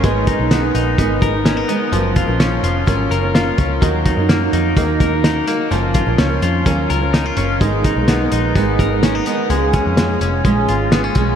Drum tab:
HH |xxxxxxxx|xxxxxxxx|xxxxxxxx|xxxxxxxx|
SD |--o---o-|--o---o-|--o---o-|--o---o-|
BD |oo--oo--|-o--o--o|oo--oo--|-o--o---|

HH |xxxxxxxx|xxxxxxxx|
SD |--o---o-|--o---o-|
BD |oo--oo--|-o--o--o|